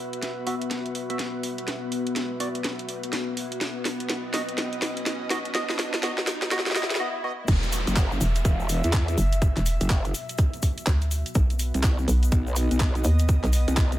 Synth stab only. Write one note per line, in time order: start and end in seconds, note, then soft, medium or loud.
0.47 0.55 B3 medium
0.47 0.55 F#4 medium
0.47 0.55 E5 medium
1.10 1.18 B3 medium
1.10 1.18 F#4 medium
1.10 1.18 E5 medium
2.40 2.48 B3 medium
2.40 2.48 F#4 medium
2.40 2.48 D5 medium
4.34 4.42 B3 medium
4.34 4.42 F#4 medium
4.34 4.42 D#5 medium
5.30 5.39 B3 medium
5.30 5.39 F#4 medium
5.30 5.39 D#5 medium
5.55 5.63 B3 medium
5.55 5.63 F#4 medium
5.55 5.63 D#5 medium
6.03 6.11 B3 medium
6.03 6.11 F#4 medium
6.03 6.11 D#5 medium
6.51 6.60 B3 medium
6.51 6.60 F#4 medium
6.51 6.60 D#5 medium
6.76 6.84 B3 medium
6.76 6.84 F#4 medium
6.76 6.84 D#5 medium
7.00 7.08 B3 medium
7.00 7.08 F#4 medium
7.00 7.08 D#5 medium
7.24 7.32 B3 medium
7.24 7.32 F#4 medium
7.24 7.32 D#5 loud